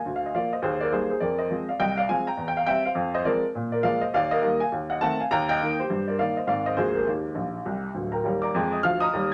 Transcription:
0.00 0.14 F5 soft
0.00 0.15 G#5 medium
0.05 0.30 D2 soft
0.16 0.25 F5 medium
0.26 0.35 D#5 soft
0.34 0.50 F3 soft
0.34 0.50 A#3 soft
0.34 0.51 D5 medium
0.34 0.52 F5 medium
0.53 0.61 C5 soft
0.53 0.63 D#5 medium
0.62 0.87 D#2 medium
0.62 0.80 G#4 soft
0.62 0.81 C5 medium
0.80 0.92 A#4 medium
0.80 0.92 D5 medium
0.92 1.08 G3 soft
0.92 1.08 A#3 soft
0.92 1.08 D#4 soft
0.92 1.09 G#4 medium
0.92 1.09 C5 medium
1.10 1.21 G#4 soft
1.10 1.21 C5 medium
1.20 1.46 F2 medium
1.20 1.38 A#4 soft
1.20 1.39 D5 medium
1.39 1.67 C5 soft
1.39 1.68 D#5 medium
1.50 1.66 F3 soft
1.50 1.67 G#3 soft
1.50 1.67 C4 soft
1.69 1.80 D5 soft
1.69 1.80 F5 medium
1.80 2.04 C2 medium
1.80 1.97 D#5 medium
1.80 1.98 G5 medium
1.97 2.08 D5 medium
1.97 2.09 F5 medium
2.09 2.25 F3 soft
2.09 2.25 G#3 soft
2.09 2.26 C4 soft
2.09 2.27 F5 medium
2.09 2.27 G#5 medium
2.27 2.46 G5 medium
2.27 2.48 A#5 medium
2.37 2.62 E2 medium
2.48 2.58 G5 medium
2.57 2.67 F5 medium
2.66 2.83 G3 soft
2.66 2.83 C4 medium
2.66 2.84 E5 medium
2.66 2.85 G5 medium
2.85 3.13 C5 medium
2.85 3.15 F5 medium
2.95 3.21 F2 medium
3.15 3.25 C5 medium
3.15 3.26 D#5 medium
3.25 3.41 F3 medium
3.25 3.42 G#3 soft
3.25 3.42 C4 medium
3.25 3.43 A#4 medium
3.25 3.44 D5 medium
3.55 3.80 A#2 medium
3.72 3.84 A#4 medium
3.72 3.83 D5 medium
3.83 4.00 F3 medium
3.83 4.00 G#3 soft
3.83 4.00 A#3 soft
3.83 4.01 D5 medium
3.83 4.02 F5 medium
4.01 4.13 C5 soft
4.01 4.13 D#5 medium
4.14 4.39 D#2 medium
4.14 4.31 D5 medium
4.14 4.32 F5 loud
4.31 4.59 A#4 medium
4.31 4.61 D#5 medium
4.42 4.58 D#3 soft
4.42 4.58 G3 soft
4.42 4.59 A#3 medium
4.60 4.71 F5 soft
4.60 4.72 G#5 medium
4.72 4.97 D#2 medium
4.90 5.01 D#5 medium
4.90 5.01 F#5 medium
5.01 5.18 D#3 soft
5.01 5.17 A3 medium
5.01 5.18 C4 medium
5.01 5.19 F#5 medium
5.01 5.19 A5 loud
5.20 5.31 F5 soft
5.20 5.31 G#5 medium
5.31 5.56 D#2 medium
5.31 5.48 G5 medium
5.31 5.49 A#5 medium
5.49 5.77 D#5 medium
5.49 5.78 G5 loud
5.61 5.77 D#3 soft
5.61 5.77 A#3 soft
5.61 5.77 D#4 soft
5.80 6.07 G4 soft
5.80 6.08 C5 medium
5.90 6.14 G2 medium
6.07 6.19 A#4 soft
6.07 6.18 D5 medium
6.19 6.35 D#3 soft
6.19 6.35 A#3 soft
6.19 6.35 D#4 soft
6.19 6.36 D5 medium
6.19 6.37 F5 medium
6.37 6.48 C5 soft
6.37 6.48 D#5 medium
6.47 6.72 G#2 medium
6.47 6.64 D#3 soft
6.47 6.64 G#3 soft
6.47 6.64 C4 soft
6.47 6.65 D5 medium
6.47 6.66 F5 medium
6.66 6.75 C5 medium
6.66 6.77 D#5 medium
6.77 7.02 D2 medium
6.77 6.93 F3 soft
6.77 6.93 G#3 soft
6.77 6.94 A#3 soft
6.77 6.95 G#4 medium
6.77 6.95 C5 medium
6.95 7.05 G4 soft
6.95 7.06 A#4 soft
7.06 7.31 D#2 soft
7.06 8.09 D#4 soft
7.06 8.12 G4 soft
7.35 7.57 A#1 medium
7.66 7.87 C2 medium
7.94 8.16 D1 medium
7.94 8.16 D2 soft
8.12 8.40 A#4 soft
8.12 8.40 G5 soft
8.12 8.41 A#5 soft
8.24 8.47 D#2 medium
8.24 8.48 G3 medium
8.42 8.69 D5 soft
8.42 8.69 A#5 medium
8.42 8.71 D6 medium
8.55 8.77 F2 medium
8.55 8.78 G#3 medium
8.73 8.82 D#5 soft
8.73 8.83 D#6 medium
8.83 9.06 D2 medium
8.83 9.07 F3 medium
8.83 9.00 F5 medium
8.83 9.00 F6 medium
9.00 9.28 D#5 medium
9.00 9.28 A#5 medium
9.00 9.29 D#6 medium
9.13 9.34 D#2 medium
9.13 9.34 G3 medium

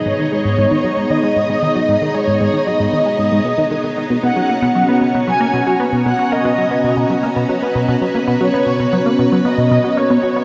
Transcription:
0.00 10.44 B3 medium
0.00 4.19 D#4 medium
0.00 4.19 G#4 medium
0.00 4.19 D#5 medium
0.00 10.44 A#5 medium
0.06 0.13 G#2 medium
0.06 1.12 C#5 loud
0.19 0.26 D#3 medium
0.32 0.43 G#3 medium
0.45 0.56 G#2 medium
0.58 0.66 G#2 loud
0.71 0.76 D#3 medium
0.84 0.89 F#3 medium
0.97 1.05 G#2 medium
1.10 1.18 D#3 medium
1.10 2.16 D#5 loud
1.23 1.35 G#3 medium
1.36 1.48 G#2 medium
1.50 1.57 G#2 loud
1.62 1.67 D#3 medium
1.75 1.80 F#3 medium
1.88 1.96 G#2 medium
2.02 2.09 D#3 medium
2.14 2.26 G#3 medium
2.14 2.68 C#5 loud
2.28 2.39 G#2 medium
2.41 2.48 G#2 loud
2.54 2.58 D#3 medium
2.67 2.71 F#3 medium
2.67 3.18 D#5 loud
2.80 2.87 G#2 medium
2.93 3.00 D#3 medium
3.06 3.17 G#3 medium
3.19 3.30 G#2 medium
3.19 3.93 D#5 loud
3.32 3.40 G#2 loud
3.45 3.52 B2 medium
3.58 3.65 D#3 medium
3.71 3.76 D#3 medium
3.84 3.92 D#3 medium
3.97 4.05 D#3 loud
4.10 4.18 B2 medium
4.23 4.31 B2 loud
4.23 10.44 C#4 medium
4.23 10.44 F#4 medium
4.23 7.33 C#5 medium
4.23 4.98 F#5 loud
4.36 4.41 F#3 medium
4.49 4.54 A#3 medium
4.62 4.70 B2 loud
4.75 4.83 F#3 medium
4.89 5.00 B3 medium
5.01 5.13 B2 medium
5.15 5.22 B2 loud
5.27 5.32 F#3 medium
5.27 5.76 G#5 loud
5.41 5.45 A#3 medium
5.54 5.61 B2 loud
5.67 5.74 F#3 medium
5.80 5.91 B3 medium
5.93 6.04 B2 medium
6.06 6.13 B2 loud
6.06 6.33 F#5 loud
6.19 6.23 F#3 medium
6.32 6.37 A#3 medium
6.32 7.36 D#5 loud
6.45 6.53 B2 loud
6.58 6.66 F#3 medium
6.71 6.82 B3 medium
6.84 6.95 B2 medium
6.97 7.05 B2 loud
7.10 7.15 F#3 medium
7.23 7.28 A#3 medium
7.36 7.44 B2 loud
7.36 10.44 B4 medium
7.49 7.57 F#3 medium
7.62 7.74 B3 medium
7.75 7.87 B2 medium
7.88 7.96 B2 loud
8.02 8.06 F#3 medium
8.15 8.19 A#3 medium
8.28 8.35 B2 loud
8.40 8.48 F#3 medium
8.40 9.15 C#5 loud
8.54 8.65 B3 medium
8.67 8.78 B2 medium
8.80 8.87 B2 loud
8.93 8.97 F#3 medium
9.06 9.10 A#3 medium
9.19 9.26 B2 loud
9.32 9.40 F#3 medium
9.45 9.56 B3 medium
9.45 9.98 D#5 loud
9.58 9.69 B2 medium
9.71 9.79 B2 loud
9.84 9.89 F#3 medium
9.97 10.02 A#3 medium
9.97 10.44 C#5 loud
10.10 10.18 B2 loud
10.23 10.31 F#3 medium
10.36 10.44 B3 medium

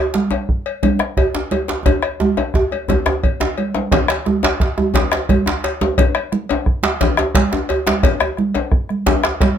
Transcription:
0.14 djembe slap medium
0.14 djembe slap soft
0.14 high conga medium
0.31 cowbell soft
0.31 djembe slap medium
0.31 djembe tone medium
0.49 bombo low medium
0.66 cowbell soft
0.83 cowbell soft
0.83 high conga medium
0.83 djembe bass medium
0.83 low conga medium
0.99 bombo rim medium
0.99 djembe slap medium
1.17 bombo low medium
1.17 cowbell soft
1.17 djembe tone medium
1.17 high conga soft
1.34 bombo rim soft
1.34 djembe slap medium
1.34 djembe tone medium
1.51 cowbell soft
1.51 high conga medium
1.51 djembe tone medium
1.68 djembe slap medium
1.86 bombo low medium
1.86 cowbell medium
1.86 high conga soft
1.86 djembe tone medium
1.86 djembe bass medium
1.86 low conga medium
2.03 bombo rim medium
2.03 cowbell soft
2.20 djembe tone loud
2.20 high conga medium
2.37 bombo rim soft
2.37 cowbell soft
2.37 djembe slap medium
2.37 djembe tone medium
2.37 high conga soft
2.54 bombo rim soft
2.54 bombo low medium
2.54 djembe tone loud
2.71 cowbell soft
2.71 djembe slap soft
2.71 high conga soft
2.88 bombo rim soft
2.88 cowbell soft
2.88 djembe slap soft
2.88 djembe tone loud
2.88 high conga medium
2.88 djembe bass medium
2.88 low conga medium
3.06 bombo rim medium
3.06 djembe slap medium
3.06 djembe tone medium
3.06 low conga soft
3.23 bombo low medium
3.23 cowbell soft
3.23 djembe slap soft
3.23 low conga soft
3.40 bombo rim soft
3.40 djembe slap medium
3.40 djembe tone medium
3.40 low conga medium
3.58 cowbell soft
3.58 high conga medium
3.74 bombo rim soft
3.74 djembe slap medium
3.74 high conga medium
3.92 bombo low loud
3.92 cowbell medium
3.92 djembe slap soft
3.92 djembe slap loud
3.92 djembe tone medium
3.92 high conga soft
3.92 djembe bass medium
3.92 low conga medium
4.08 bombo rim medium
4.08 cowbell medium
4.08 djembe slap medium
4.08 high conga soft
4.25 bombo rim soft
4.25 high conga medium
4.25 djembe tone medium
4.43 cowbell soft
4.43 djembe slap medium
4.43 djembe tone medium
4.44 djembe slap loud
4.60 bombo rim soft
4.60 bombo low loud
4.60 djembe slap medium
4.78 bombo rim soft
4.78 djembe tone medium
4.78 high conga medium
4.94 cowbell medium
4.94 djembe slap loud
4.94 djembe tone medium
4.94 djembe bass medium
4.94 low conga medium
5.12 bombo rim medium
5.12 djembe slap medium
5.12 high conga soft
5.29 bombo low loud
5.29 cowbell medium
5.29 high conga medium
5.29 djembe tone medium
5.46 bombo rim soft
5.46 djembe slap loud
5.46 djembe tone medium
5.63 cowbell soft
5.63 djembe slap medium
5.63 high conga soft
5.81 djembe slap medium
5.81 djembe tone medium
5.81 high conga medium
5.98 bombo low loud
5.98 cowbell medium
5.98 djembe slap soft
5.98 djembe tone medium
5.98 high conga soft
5.98 djembe bass medium
5.98 low conga medium
6.15 bombo rim medium
6.15 cowbell medium
6.15 high conga soft
6.32 bombo rim soft
6.32 high conga medium
6.49 cowbell soft
6.49 djembe slap medium
6.49 high conga soft
6.49 djembe tone medium
6.66 bombo rim soft
6.66 bombo low medium
6.83 bombo rim soft
6.83 djembe slap loud
6.83 high conga medium
7.01 cowbell medium
7.01 djembe slap medium
7.01 djembe tone medium
7.01 djembe bass medium
7.01 low conga medium
7.17 bombo rim medium
7.17 djembe slap medium
7.17 djembe tone medium
7.17 high conga soft
7.34 bombo low loud
7.34 cowbell medium
7.34 djembe slap loud
7.34 high conga medium
7.52 bombo rim soft
7.52 djembe slap medium
7.52 djembe tone medium
7.69 cowbell medium
7.69 high conga soft
7.69 djembe tone medium
7.87 djembe slap medium
7.87 djembe slap loud
7.87 high conga medium
8.03 bombo low loud
8.03 cowbell medium
8.03 djembe slap soft
8.03 djembe slap medium
8.03 djembe tone medium
8.03 high conga soft
8.03 djembe bass medium
8.03 low conga medium
8.20 bombo rim medium
8.20 cowbell medium
8.20 djembe tone medium
8.20 high conga soft
8.37 bombo rim soft
8.37 high conga medium
8.54 cowbell soft
8.54 djembe slap medium
8.54 djembe tone medium
8.72 bombo rim soft
8.72 bombo low loud
8.89 bombo rim soft
8.89 high conga medium
9.06 cowbell soft
9.06 djembe slap loud
9.06 djembe tone medium
9.06 djembe bass medium
9.06 low conga medium
9.23 bombo rim medium
9.23 djembe slap medium
9.23 high conga soft
9.40 bombo low loud
9.40 cowbell medium
9.40 djembe slap medium
9.40 high conga medium

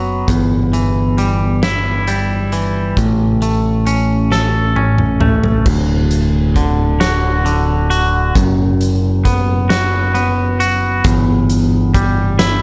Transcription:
0.00 0.24 F#1 medium
0.00 0.28 F#3 soft
0.00 1.18 B3 soft
0.00 0.28 F#4 medium
0.28 2.93 G1 medium
0.28 2.52 E2 medium
0.28 kick medium
0.28 closed hi-hat medium
0.73 2.51 E3 medium
0.73 closed hi-hat soft
1.18 2.07 G3 medium
1.18 closed hi-hat soft
1.63 2.97 E4 medium
1.63 snare medium
1.63 closed hi-hat medium
2.07 2.97 G3 medium
2.07 closed hi-hat soft
2.52 2.97 E3 medium
2.52 closed hi-hat soft
2.97 5.62 A1 medium
2.97 5.22 A2 medium
2.97 kick medium
2.97 closed hi-hat medium
3.42 5.20 A3 medium
3.42 closed hi-hat medium
3.86 4.75 C#4 medium
3.86 closed hi-hat medium
4.31 5.66 A4 medium
4.31 snare soft
4.76 5.66 C#4 medium
4.76 high tom soft
4.98 mid tom medium
5.21 5.66 A3 medium
5.21 mid tom medium
5.44 floor tom medium
5.66 8.31 D1 medium
5.66 7.90 D2 soft
5.66 kick medium
5.66 crash medium
6.11 closed hi-hat medium
6.56 7.44 D3 medium
6.56 kick medium
6.56 closed hi-hat soft
7.00 7.89 F#4 medium
7.00 snare medium
7.00 closed hi-hat medium
7.45 8.35 D3 medium
7.45 closed hi-hat soft
7.90 8.35 F#4 medium
7.90 closed hi-hat soft
8.35 11.01 F#1 medium
8.35 10.60 F#2 medium
8.35 kick medium
8.35 closed hi-hat medium
8.81 closed hi-hat soft
9.25 10.14 B3 medium
9.25 kick medium
9.25 closed hi-hat medium
9.69 10.59 F#4 medium
9.69 snare medium
9.69 closed hi-hat medium
10.14 11.94 B3 medium
10.14 closed hi-hat soft
10.60 11.05 F#4 medium
10.60 closed hi-hat medium
11.04 12.62 G1 medium
11.04 12.62 E2 medium
11.04 kick medium
11.04 closed hi-hat medium
11.50 closed hi-hat medium
11.94 12.62 G3 soft
11.94 kick medium
11.94 closed hi-hat medium
12.39 12.62 E4 medium
12.39 snare medium
12.39 closed hi-hat medium

